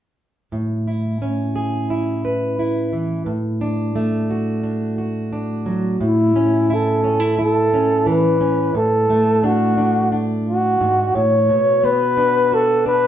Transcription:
0.52 steel-string acoustic guitar A2
0.87 steel-string acoustic guitar E4
1.22 steel-string acoustic guitar C#4
1.56 steel-string acoustic guitar G#4
1.90 steel-string acoustic guitar E4
2.25 steel-string acoustic guitar B4
2.59 steel-string acoustic guitar E4
2.93 steel-string acoustic guitar E3
3.26 steel-string acoustic guitar A2
3.61 steel-string acoustic guitar D4
3.96 steel-string acoustic guitar A3
4.30 steel-string acoustic guitar F#4
4.64 steel-string acoustic guitar D4
4.98 steel-string acoustic guitar F#4
5.33 steel-string acoustic guitar D4
5.66 steel-string acoustic guitar F#3
6.01 steel-string acoustic guitar A2
6.05 flugelhorn E4
6.36 steel-string acoustic guitar C#4
6.70 steel-string acoustic guitar E4, flugelhorn A4
7.04 steel-string acoustic guitar C#4
7.20 steel-string acoustic guitar E4
7.39 steel-string acoustic guitar E4, flugelhorn A4
7.74 steel-string acoustic guitar C#4
8.06 steel-string acoustic guitar E3, flugelhorn B4
8.41 steel-string acoustic guitar C#4
8.74 steel-string acoustic guitar A2, flugelhorn A4
9.10 steel-string acoustic guitar A3
9.44 steel-string acoustic guitar D4, flugelhorn F#4
9.78 steel-string acoustic guitar D4
10.12 steel-string acoustic guitar D4
10.47 flugelhorn F#4
10.81 steel-string acoustic guitar G#2
11.15 steel-string acoustic guitar A2, flugelhorn C#5
11.49 steel-string acoustic guitar B2
11.84 steel-string acoustic guitar B3, flugelhorn B4
12.17 steel-string acoustic guitar D4
12.52 steel-string acoustic guitar F#4, flugelhorn A4
12.86 steel-string acoustic guitar D4, flugelhorn B4

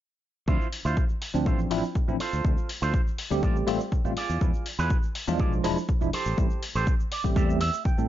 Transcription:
0.48 fingered electric bass D2, tine electric piano F3 C4 D4 E4, clean electric guitar E4 F4 C5, kick, shaker
0.61 shaker
0.73 open hi-hat
0.85 fingered electric bass D2, clean electric guitar E4 F4 C5, shaker
0.97 kick, shaker
1.09 shaker
1.21 muted clean electric guitar stroke, open hi-hat
1.34 fingered electric bass D2, tine electric piano F3 C4 D4, shaker
1.46 fingered electric bass A1, clean electric guitar E4 F4 C5, kick, shaker
1.59 shaker
1.71 fingered electric bass A1, tine electric piano F3 C4 D4 E4, muted clean electric guitar stroke, open hi-hat
1.83 muted clean electric guitar stroke, shaker
1.95 kick, shaker
2.08 fingered electric bass A1, tine electric piano F3 C4 D4 E4, shaker
2.20 clean electric guitar F4 A4 C5, open hi-hat
2.33 fingered electric bass D2, shaker
2.44 fingered electric bass D2, tine electric piano G3 A3 C4 F4, kick, shaker
2.58 shaker
2.69 open hi-hat
2.82 fingered electric bass D2, clean electric guitar F4 A4 C5, shaker
2.94 kick, shaker
3.08 shaker
3.18 muted clean electric guitar stroke, open hi-hat
3.31 fingered electric bass D2, tine electric piano G3 A3 C4 G4, shaker
3.43 fingered electric bass A1, clean electric guitar F4 A4 D5, kick, shaker
3.56 shaker
3.67 fingered electric bass A1, tine electric piano G3 A3 C4 F4, muted clean electric guitar stroke, open hi-hat
3.80 muted clean electric guitar stroke, shaker
3.92 kick, shaker
4.05 fingered electric bass A1, tine electric piano G3 A3 C4 F4, shaker
4.17 clean electric guitar F4 G#4 D5, muted fingered electric bass stroke, open hi-hat
4.29 fingered electric bass E2, shaker
4.41 fingered electric bass E2, tine electric piano F3 G#3 D4 E4, kick, shaker
4.54 shaker
4.66 open hi-hat
4.79 fingered electric bass E2, clean electric guitar F4 G#4 B4, shaker
4.90 kick, shaker
5.03 shaker
5.15 muted clean electric guitar stroke, open hi-hat
5.27 fingered electric bass E2, tine electric piano F3 G#3 D4 F4, shaker
5.39 fingered electric bass B1, clean electric guitar F4 G#4 D5, kick, shaker
5.53 shaker
5.64 fingered electric bass E1, tine electric piano F3 G#3 D4 E4, muted clean electric guitar stroke, open hi-hat
5.77 muted clean electric guitar stroke, shaker
5.89 kick, shaker
6.01 fingered electric bass E1, tine electric piano F3 G#3 D4 E4, shaker
6.13 clean electric guitar G4 A4 C5, open hi-hat
6.25 fingered electric bass A1, shaker
6.37 fingered electric bass A1, tine electric piano G3 A3 C4 E4, kick, shaker
6.50 shaker
6.63 open hi-hat
6.75 fingered electric bass A1, clean electric guitar G4 A4 C5, shaker
6.87 kick, shaker
7.00 shaker
7.11 clean electric guitar D5, muted clean electric guitar stroke, open hi-hat
7.24 fingered electric bass A1, tine electric piano G3 A3 C4 G4, kick, shaker
7.35 fingered electric bass E2, clean electric guitar G4 A4 D5 E5, kick, shaker
7.50 shaker
7.60 clean electric guitar E5, muted clean electric guitar stroke, open hi-hat
7.73 muted clean electric guitar stroke, shaker
7.85 clean electric guitar G5, kick, shaker
7.98 fingered electric bass A2, tine electric piano G3 A3 C4 A4, shaker

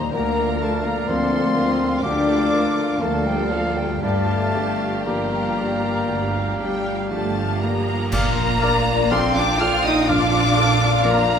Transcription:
Already playing: grand piano A#2 G3 D#4 G4, harp D3 G3 A#3 D#4, french horn section A#3, viola section D#4 G4, violin section C5 A#5, flute A#5
0.00 harp F3
0.05 harp F4
0.12 cello section D2, double bass section D2, grand piano D2, french horn section A#3, viola section D4 A#4, violin section A#4 A#5, clarinet D5, oboe F5, flute A#5
0.37 viola section F4 A4
0.60 french horn section A3, viola section D4 A#4, grand piano F4 A#4, flute A5, violin section A5
0.84 french horn section A#3, viola section F4 A4, flute A#5, violin section A#5
1.08 double bass section D2, cello section D2, grand piano F3 A#3 F4, french horn section C4, viola section D4 A#4, violin section A4 C6, flute C6
1.32 viola section F4 A4
1.55 viola section D4 A#4, violin section F4, grand piano F4 A#4
1.79 viola section F4 A4
2.02 double bass section D2, grand piano D2, cello section D2, french horn section D4, viola section D4 A#4, violin section G4 D6, clarinet D5, oboe F5, flute D6
2.27 viola section F4 A4
2.52 viola section D4 A#4, violin section F4, grand piano F4 A#4
2.77 viola section F4 A4
3.01 cello section D2, double bass section D2, grand piano F3 A#3 F4, french horn section A3, viola section D4 A#4, violin section A4 A5, clarinet D5, oboe F5, flute A5
3.26 french horn section G3, viola section F4 A4, violin section G5, flute G5
3.50 french horn section F3, grand piano A#3 F4, viola section D4 A#4, violin section F5, flute F5
3.76 french horn section G3, viola section F4 A4, violin section G5, flute G5
3.84 harp G2
3.89 harp G3
3.93 harp F4
3.98 cello section G2, viola section G4 D5, harp D5
4.02 double bass section G1, grand piano G2, french horn section A3, violin section G4 A5, clarinet D5, oboe F5, flute A5
4.27 viola section F4 F5
4.54 grand piano D4 G4, viola section G4 D5
4.79 viola section F4 F5
5.05 double bass section G1, cello section G2, grand piano F3 D4 G4, french horn section A#3, viola section G4 D5, clarinet D5, oboe F5, violin section A#5, flute A#5
5.31 viola section F4 F5
5.57 grand piano D4 G4, viola section G4 D5
5.83 viola section F4 F5
6.08 double bass section G1, grand piano D2, cello section G2, viola section G4 D5
6.33 viola section F4 F5
6.59 cello section G3, french horn section G3, grand piano D4 G4, viola section G4 D5, violin section G5
6.84 viola section F4 F5
7.10 double bass section G1, cello section G2 A3, grand piano F3 D4 G4, french horn section A3, viola section G4 D5, violin section A5
7.36 viola section F4 F5
7.62 french horn section A#3, cello section A#3, grand piano D4 G4, viola section G4 D5, violin section A#5
7.87 viola section F4 F5
8.12 double bass section A#1, grand piano A#2, harp A#2, viola section F3 D4, cello section A#3, french horn section A#3, violin section F4 F5 A#5, oboe D5, clarinet F5, flute F6, concert bass drum, crash
8.38 harp F3
8.62 grand piano D4 A#4, oboe D5, clarinet D5, flute F6
8.87 harp D5
9.11 grand piano F3 D4 A4, french horn section C4, cello section C4, oboe D5, clarinet G5, violin section C6, flute F6
9.36 cello section D4, french horn section D4, harp F4, violin section D6
9.60 grand piano D4 A4, cello section F4, french horn section F4, oboe D5, flute F6, violin section F6
9.84 harp F3, french horn section D#4, cello section D#4, violin section D#6
10.08 grand piano F2, harp A#2, cello section D4, french horn section D4, oboe D5, clarinet F5, violin section D6, flute F6
10.56 harp F3, grand piano D4 A4, oboe D5, flute F6
10.81 harp D5
11.03 grand piano F3 D4 A#4, french horn section A#3, cello section A#3, oboe D5, violin section A#5, flute F6
11.29 harp F4

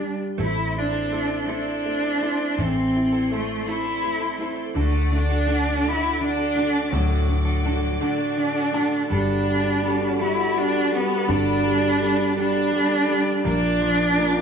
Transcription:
Already playing: fingered electric bass G1, grand piano D3 G3, cello D4
0.02 grand piano G3
0.38 fingered electric bass A1, clean electric guitar A3 C4 E4 A4, grand piano A3, string section A4 C5 E5 C6
0.42 cello E4
0.56 clean electric guitar C4 E4 A4
0.76 cello D4, grand piano E4
0.92 clean electric guitar C4 E4 A4
1.11 clean electric guitar A3 C4 E4 A4, grand piano A3
1.47 clean electric guitar A3 C4 E4 A4, grand piano E4
1.52 cello D4
1.66 clean electric guitar C4 E4 A4
1.85 grand piano A3
2.02 clean electric guitar C4 E4 A4
2.20 clean electric guitar A3 C4 E4 A4, grand piano E4
2.57 fingered electric bass A1, grand piano E3, clean electric guitar A3 C4 E4 A4, string section D5
2.61 cello C4
2.76 clean electric guitar C4 E4 A4
2.96 grand piano E4
3.12 clean electric guitar C4 E4 A4
3.30 clean electric guitar A3 C4 E4 A4, grand piano A3
3.35 cello A3
3.67 clean electric guitar A3 C4 E4 A4, grand piano E4, cello E4
3.85 clean electric guitar C4 E4 A4
4.03 grand piano A3
4.20 clean electric guitar C4 E4 A4
4.38 clean electric guitar A3 C4 E4 A4, grand piano E4
4.74 fingered electric bass D2, clean electric guitar D3 A3 D4 F#4 A4, grand piano D3, string section F#5 D6
4.79 cello A3
4.92 clean electric guitar D4 F#4 A4
5.12 grand piano D3, cello D4
5.29 clean electric guitar D4 F#4 A4
5.47 grand piano D3, clean electric guitar A3 D4 F#4 A4
5.83 clean electric guitar D3 A3 D4 F#4 A4, grand piano D3
5.88 cello E4
6.01 clean electric guitar D4 F#4 A4
6.20 grand piano D3, cello D4
6.37 clean electric guitar D4 F#4 A4
6.55 grand piano D3, clean electric guitar A3 D4 F#4 A4
6.92 fingered electric bass D2, grand piano A2, clean electric guitar D3 A3 D4 F#4 A4
6.96 cello F#3
7.09 clean electric guitar D4 F#4 A4
7.28 grand piano D3
7.45 clean electric guitar D4 F#4 A4
7.63 grand piano D3, clean electric guitar A3 D4 F#4 A4
8.00 clean electric guitar D3 A3 D4 F#4 A4, grand piano D3, cello D4
8.18 clean electric guitar D4 F#4 A4
8.37 grand piano D3 D5
8.54 clean electric guitar D4 F#4 A4
8.73 grand piano D3 A5, clean electric guitar A3 D4 F#4 A4
9.10 fingered electric bass G1, clean electric guitar G3 B3 D4 A4, grand piano G3, cello D4, french horn section F#4, string section A4 D5 A5 B5
9.47 grand piano G3
9.82 grand piano G3, clean electric guitar B3 D4 A4
10.19 grand piano G3, clean electric guitar G3 B3 D4 A4, cello E4
10.56 grand piano G3, cello D4
10.91 grand piano G3, cello B3, clean electric guitar D4 A4
11.27 fingered electric bass G1, grand piano D3, clean electric guitar G3 B3 D4 A4, cello D4
11.64 grand piano G3
12.00 grand piano G3, clean electric guitar B3 D4 A4
12.36 grand piano G3, clean electric guitar G3 B3 D4 A4, cello D4
12.72 grand piano G3
13.08 grand piano G3, clean electric guitar D4 G4 A4
13.44 fingered electric bass A#1, clean electric guitar A#2 F3 A#3 D4 F4 A#4, grand piano A#3, cello D4, french horn section F4, string section A#4 D6
13.81 grand piano F3
14.17 clean electric guitar A#3 D4 F4 A#4, grand piano A#3

